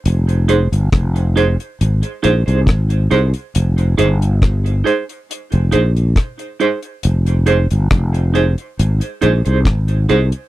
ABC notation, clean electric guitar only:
X:1
M:4/4
L:1/16
Q:1/4=69
K:Fm
V:1 name="Clean electric guitar"
z2 [EAc] z3 [EAc] z3 [EAc] [EAc] z2 [EAc] z | z2 [EAc] z3 [EAc] z3 [EAc] z3 [EAc] z | z2 [EAc] z3 [EAc] z3 [EAc] [EAc] z2 [EAc] z |]